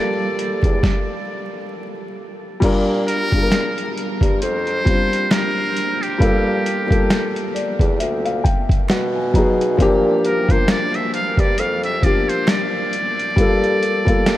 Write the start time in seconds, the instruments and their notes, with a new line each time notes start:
Already playing: upright piano G3 A#3 F4 A4, muted trumpet D5
0.39 closed hi-hat
0.63 bassoon E2, kick, closed hi-hat
0.83 kick, snare
2.60 bassoon A#2, upright piano G3 D4 F4, kick, closed hi-hat, crash
2.65 upright piano A#4
3.08 muted trumpet A#4, closed hi-hat
3.31 upright piano G3 D4 F4, kick, closed hi-hat
3.36 upright piano G#4
3.43 upright piano A#4
3.52 finger snap, snare, closed hi-hat
3.78 closed hi-hat
3.98 closed hi-hat
4.21 bassoon G2, kick, closed hi-hat
4.42 bassoon F2, muted trumpet C5, closed hi-hat
4.67 closed hi-hat
4.85 upright piano G3 C4 F4, kick, closed hi-hat
4.90 upright piano D4 C5
5.13 closed hi-hat
5.31 muted trumpet A#4, finger snap, snare, closed hi-hat
5.77 closed hi-hat
6.02 muted trumpet G4, closed hi-hat
6.18 bassoon G2, upright piano G3 A#3 F4, kick, closed hi-hat
6.23 upright piano A4
6.66 closed hi-hat
6.87 upright piano G3 A#3 F4, kick
6.92 upright piano A4, closed hi-hat
7.10 finger snap, snare, closed hi-hat
7.36 closed hi-hat
7.55 upright piano D5, closed hi-hat
7.79 bassoon E2, kick, closed hi-hat
7.99 bassoon D2, upright piano E5, closed hi-hat
8.25 upright piano F5, closed hi-hat
8.44 upright piano G5, kick, closed hi-hat
8.69 kick, closed hi-hat
8.88 bassoon B2, upright piano F#5, finger snap, snare, closed hi-hat
9.16 upright piano G#5
9.33 upright piano F#3 B3 D#4 A#5, kick, closed hi-hat
9.38 upright piano G#4
9.61 closed hi-hat
9.77 bassoon A#2, upright piano F3 A#3 D4, kick, closed hi-hat
9.82 upright piano G4
10.24 muted trumpet A#4, closed hi-hat
10.48 upright piano F3 A#3 D4, muted trumpet C5, kick, closed hi-hat
10.52 upright piano A#4
10.68 muted trumpet D5, finger snap, snare, closed hi-hat
10.94 muted trumpet E5, closed hi-hat
11.14 muted trumpet F5, closed hi-hat
11.37 bassoon G2, muted trumpet D5, kick, closed hi-hat
11.58 bassoon F2, muted trumpet F5, closed hi-hat
11.83 muted trumpet E5, closed hi-hat
12.01 upright piano F3 A#3 D4, muted trumpet D5, kick, closed hi-hat
12.06 upright piano G4
12.29 muted trumpet C5, closed hi-hat
12.47 muted trumpet D5, finger snap, snare, closed hi-hat
12.93 closed hi-hat
13.19 closed hi-hat
13.36 bassoon G2, upright piano G3 A#3 F4, kick, closed hi-hat
13.41 upright piano A4
13.64 closed hi-hat
13.83 closed hi-hat
14.05 upright piano G3 A#3 F4, kick, closed hi-hat
14.10 upright piano A4
14.26 finger snap, snare, closed hi-hat